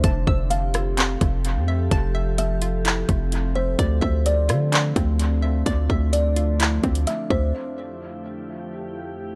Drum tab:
HH |x---x-x-x-x-x---|x---x-x-x-x-x---|x---x-x-x-x-x---|x---x-x-x-xxx---|
CP |--------x-------|--------x-------|--------x-------|--------x-------|
SD |------r---------|----------------|------r---------|----------------|
BD |o-o-------o-----|o---------o-----|o-o-------o-----|o-o-------o---o-|

HH |----------------|
CP |----------------|
SD |----------------|
BD |----------------|